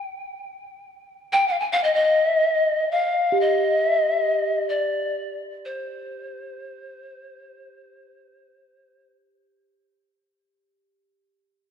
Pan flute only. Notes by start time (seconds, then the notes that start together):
1.32 G5
1.48 F5
1.60 G#5
1.73 F5
1.84 D#5
1.94 D#5
2.91 F5
3.41 D#5
3.86 E5
3.98 D#5
4.11 E5
4.24 D#5
4.69 D5
5.65 C5